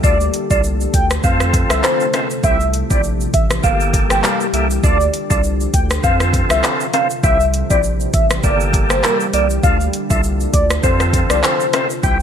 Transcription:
Already playing: D3
0.03 D2 F3 A3 D4 F4 A4 D5, kick, shaker
0.21 shaker
0.34 closed hi-hat, shaker
0.50 C2 D4 F4 A4 D5, kick, shaker
0.63 shaker
0.81 shaker
0.93 D2 G5, kick, closed hi-hat, shaker
1.10 cross-stick, shaker
1.23 F2 C3 F3 C4 F4 A4 F5, kick, shaker
1.40 cross-stick, shaker
1.53 kick, closed hi-hat, shaker
1.70 C2 E5, cross-stick, shaker
1.84 C5, cross-stick, clap, shaker
2.00 shaker
2.14 C4 F4 A4, cross-stick, closed hi-hat, high timbale, shaker
2.30 shaker
2.43 C2 E3 G3 C4 E4 G4 E5, kick, shaker
2.60 shaker
2.74 closed hi-hat, shaker
2.90 A#1 C4 E4 G4 D5, kick, shaker
3.03 shaker
3.21 shaker
3.34 A1 E5, kick, closed hi-hat, shaker
3.50 cross-stick, shaker
3.63 G1 D3 A#3 G4 A4 F5, kick, shaker
3.80 shaker
3.93 kick, closed hi-hat, shaker
4.10 G1 G5, cross-stick, shaker
4.24 F5, cross-stick, clap, shaker
4.40 shaker
4.53 C2 A#3 G4 A4 E5, closed hi-hat, shaker
4.70 shaker
4.83 D2 F3 D4 F4 A4 D5, kick, shaker
5.00 shaker
5.14 closed hi-hat, shaker
5.30 C2 D4 F4 A4 D5, kick, shaker
5.43 shaker
5.61 shaker
5.74 D2 G5, kick, closed hi-hat, shaker
5.90 cross-stick, shaker
6.03 F2 C3 F3 C4 F4 A4 F5, kick, shaker
6.20 cross-stick, shaker
6.33 kick, closed hi-hat, shaker
6.50 C2 E5, cross-stick, shaker
6.64 cross-stick, clap, shaker
6.80 shaker
6.93 C4 F4 A4 F5, closed hi-hat, high timbale, shaker
7.10 shaker
7.23 C2 E3 G3 C4 E4 G4 E5, kick, shaker
7.40 shaker
7.54 closed hi-hat, shaker
7.70 A#1 C4 E4 G4 D5, kick, shaker
7.83 shaker
8.00 shaker
8.13 A1 E5, kick, closed hi-hat, shaker
8.30 cross-stick, shaker
8.43 G1 D3 A#3 G4 A4 D5, kick, shaker
8.60 shaker
8.73 kick, closed hi-hat, shaker
8.90 G1 C5, cross-stick, shaker
9.03 A#4, cross-stick, clap, shaker
9.20 shaker
9.33 C2 A#3 G4 A4 D5, closed hi-hat, shaker
9.50 shaker
9.63 D2 F3 D4 F4 A4 F5, kick, shaker
9.80 shaker
9.93 closed hi-hat, shaker
10.10 C2 D4 F4 A4 E5, kick, shaker
10.24 shaker
10.40 shaker
10.53 D2 D5, kick, closed hi-hat, shaker
10.70 cross-stick, shaker
10.83 F2 C3 C4 F4 A4 C5, kick, shaker
11.00 cross-stick, shaker
11.13 kick, closed hi-hat, shaker
11.30 C2 D5, cross-stick, shaker
11.43 C5, cross-stick, clap, shaker
11.60 shaker
11.73 C4 F4 A4, cross-stick, closed hi-hat, high timbale, shaker
11.90 shaker
12.03 C2 C4 E4 G4 G5, kick, shaker

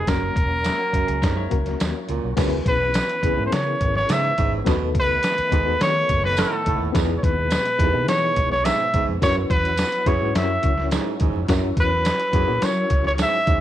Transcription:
0.06 F#1 F#2 F#3 A#3 C#4 F#4 A#4, kick, snare, closed hi-hat, tambourine
0.36 E1, kick, closed hi-hat
0.64 G#3 E4, snare, closed hi-hat, tambourine
0.79 A#3 F#4
0.93 F#1 F#2, kick, closed hi-hat
1.07 C#2 G#4, closed hi-hat
1.22 F#2 G#2 C#4 A#4, kick, snare, closed hi-hat, tambourine
1.36 E4 C#5
1.50 C#2 A#3 C#4 F#4 A#4, kick, closed hi-hat
1.66 snare, closed hi-hat
1.80 D#2, snare, closed hi-hat, tambourine
2.08 C#2 A#2, closed hi-hat
2.23 B1
2.37 C#2 F#2 E3 B3 C#4 E4 G#4 B4, kick, snare, closed hi-hat, crash, tambourine
2.66 B1 B4, kick, closed hi-hat
2.94 snare, closed hi-hat, tambourine
3.09 closed hi-hat
3.22 C#2 E2 B3 C#4 E4 G#4 B4, kick, closed hi-hat
3.36 G#2 B3 C#4 E4 G#4 A#4
3.46 C5
3.52 C#3 C#5, snare, closed hi-hat, tambourine
3.81 G#1, kick, closed hi-hat
3.95 C#5, snare
4.09 G#2 C#3 E5, snare, closed hi-hat, tambourine
4.38 G#1 G#2, kick, closed hi-hat
4.64 D#2 B2 D#3 A3 B3 C#4 F#4 A4 B4, kick, snare, closed hi-hat, tambourine
4.72 D#4
4.95 C#2, kick, closed hi-hat
5.00 B4
5.23 snare, closed hi-hat, tambourine
5.38 muted fingered electric bass stroke, closed hi-hat
5.51 D#2 G#2 B3 D#4 F#4 A4 B4, kick, closed hi-hat
5.64 B3 D#4 F#4 A4 B4
5.81 D#3 C#5, snare, closed hi-hat, tambourine
6.09 F#1 C#5, kick, closed hi-hat
6.24 D#4 B4, snare
6.37 A2 C#4 A4, snare, closed hi-hat, tambourine
6.52 A3 F#4
6.66 C#2 A2, kick, closed hi-hat
6.81 D#2
6.92 E2 B2 G#3 B3 D#4 E4 G#4 B4, kick, snare, closed hi-hat, tambourine
7.17 C#5
7.23 D#2 B4, kick, closed hi-hat
7.51 snare, closed hi-hat, tambourine
7.65 closed hi-hat
7.78 D#2 E2 B3 D#4 E4 G#4 B4, kick, closed hi-hat
7.93 B2 B3 D#4 E4 G#4 B4
8.08 E3 C#5, snare, closed hi-hat, tambourine
8.36 B1, kick, closed hi-hat
8.52 C#5, snare
8.65 G#2 E5, snare, closed hi-hat, tambourine
8.94 C#2 G#2, kick, closed hi-hat
9.08 F2
9.21 F#2 F#3 B3 C#4 E4 F#4 A#4 C#5, kick, snare, closed hi-hat, tambourine
9.29 B4
9.50 E2 B4, kick, closed hi-hat
9.65 closed hi-hat
9.77 snare, closed hi-hat, tambourine
9.92 closed hi-hat
10.06 E2 F#2 C#4 E4 F#4 B4 C#5, kick, closed hi-hat
10.20 G#2 C#4 E4 F#4 B4 C#5
10.35 F#2 C#4 E4 F#4 A#4 C#5 E5, snare, closed hi-hat, tambourine
10.63 C#2, kick, closed hi-hat
10.78 snare
10.91 G#2, snare, closed hi-hat, tambourine
11.20 D#2 G#2, kick, closed hi-hat
11.35 F2
11.48 F#2 C#4 E4 F#4 A#4 C#5, kick, snare, closed hi-hat, tambourine
11.77 E2 B4, kick, closed hi-hat
12.05 snare, closed hi-hat, tambourine
12.20 closed hi-hat
12.32 E2 F#2 C#4 E4 F#4 A#4 C#5, kick, closed hi-hat
12.47 A#2 C#4 E4 F#4 A#4 C#5
12.62 F#3 C#5, snare, closed hi-hat, tambourine
12.90 C#2, kick, closed hi-hat
13.05 C#5, snare
13.18 G#2, snare, closed hi-hat, tambourine
13.22 E5
13.46 D#2 G#2, kick, closed hi-hat

